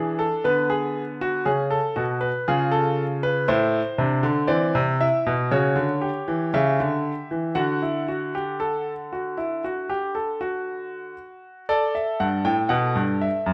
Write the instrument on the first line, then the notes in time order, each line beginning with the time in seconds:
grand piano
Already playing: E3 D4 G#4
0.19 A4
0.44 D3 B3 B4
0.70 G#4
1.21 F#4
1.45 C#3 C#4 G#4
1.70 A4
1.96 B2 F#4
2.21 B4
2.48 C#3 F4 G#4
2.71 A4
3.23 B4
3.48 A2 E4 C5
3.98 C3 D4
4.23 D3
4.47 E3 C4 D5
4.75 C3
5.00 E4 E5
5.26 B2
5.51 C#3 F#4 C#5
5.76 D3
6.01 G4
6.28 E3
6.54 C#3 E5
6.80 D3
7.31 E3
7.55 D3 F#4 F#5
7.82 E4
8.08 F#4
8.35 G4
8.60 A4
9.13 F#4
9.37 E4
9.64 F#4
9.90 G4
10.15 A4
10.41 F#4
11.69 A4 D5
11.95 E5
12.20 G2 F#5
12.45 A2 G5
12.69 B2 F#5
12.96 G2
13.22 E5
13.46 F#2